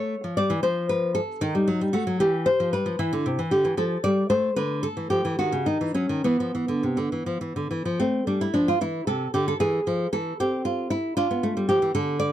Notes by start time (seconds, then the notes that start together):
Already playing: A3 C#5
0.24 F3
0.37 G3 D5
0.50 E3
0.63 F3 C5
0.89 B4
1.15 A4
1.41 D#3 D#4
1.55 G3
1.68 F#3
1.81 G3
1.93 A3 F#4
2.07 F#3
2.20 E3 G4
2.46 C5
2.60 F3
2.73 G3 B4
2.86 F3
2.99 E3 E4
3.13 D3
3.26 C3
3.39 E3
3.51 D3 G4
3.65 E3
3.77 F3 A4
4.04 G3 D5
4.30 A3 C5
4.56 D3 B4
4.83 A4
4.97 E3
5.10 F3 G4
5.25 E3
5.39 D#3 F#4
5.52 C#3
5.66 D#3 D#4
5.81 E3
5.94 F#3 C#4
6.09 D#3
6.24 E3 B3
6.40 F3
6.55 E3
6.68 D3
6.83 C3
6.97 D3
7.12 E3
7.26 F3
7.41 E3
7.56 D3
7.71 E3
7.85 F3
8.00 A3 C4
8.27 G3 D4
8.41 E4
8.54 F3 D4
8.68 F4
8.81 E3 E4
9.07 C3 A4
9.34 D3 G4
9.48 A4
9.60 E3 G#4
9.87 F3
10.13 E3 A4
10.40 C4 G4
10.65 F4
10.90 E4
11.17 D4 F4
11.31 B3
11.43 A3
11.57 G3
11.69 F3 G4
11.82 E3
11.95 D3 A4
12.19 D5